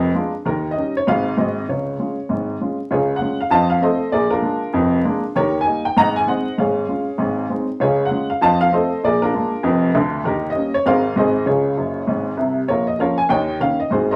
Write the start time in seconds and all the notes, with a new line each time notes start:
Already playing: A#4
0.14 G#3 D4 F4
0.45 D#2 D#3 A#4
0.71 D#5
0.77 G3 C#4 D#4
0.97 C#5
1.07 G#1 G#2 F#3 C4 F4 F5
1.37 G#1 G#2 G#3 C4 F#4 D#5
1.68 C#2 C#3 C#5
1.99 G#3 C#4 F4
2.29 G#1 G#2
2.61 G#3 C#4 F4
2.91 C#2 C#3 F4 G#4 C#5
3.16 F#5
3.21 G#3 C#4 F4
3.40 F5
3.51 F2 F3 D#5 F5 A5
3.70 F5
3.81 A3 C4 F4 A4 C5 D#5
4.12 A#1 A#2 G#4 A#4 D5
4.31 D4 F4 A#4
4.42 G#3 A#3 D4
4.73 F1 F2
5.05 G#3 A#3 D4
5.35 D#2 D#3 G4 A#4 C#5
5.61 G#5
5.65 G3 A#3 D#4
5.85 G5
5.97 G#1 G#2 D#5 F#5 A#5
6.16 G#5
6.27 G#3 C4 D#4 C5 D#5 F#5
6.58 G#1 G#2 G#4 C#5 F5
6.88 G#3 C#4 F4
7.18 G#1 G#2
7.50 G#3 C4 D#4
7.80 C#2 C#3 F4 G#4 C#5
8.05 F#5
8.11 G#3 C#4 F4
8.30 F5
8.41 F2 F3 D#5 F5 A5
8.61 F5
8.72 A3 C4 F4 A4 C5 D#5
9.03 A#1 A#2 G#4 A#4 D5
9.22 D4 F4 A#4
9.34 G#3 A#3 D4
9.63 F1 F2
9.95 D2 D3
10.24 D#2 D#3 D#4 G4 A#4
10.50 D#5
10.55 G3 A#3 C#4
10.74 C#5
10.86 G#1 G#2 F#3 G#3 C4 A#4 C5 F5
11.16 G#1 G#2 F#3 G#3 C4 G#4 C5 D#5
11.46 C#2 C#3 F4 G#4 C#5
11.77 F#1 F#2
12.07 G#1 G#2
12.37 C2 C3
12.68 A#1 A#2 F4 A#4 C#5
12.87 D#5
12.99 F3 A#3 C#4 A#4 C#5 F5
13.18 G#5
13.29 D#2 D#3 C#5 D#5 G5
13.60 D#3 A#3 C#4 F5
13.80 D#5
13.90 G#1 G#2 F#4 G#4 C5
14.11 A#4 C5 D#5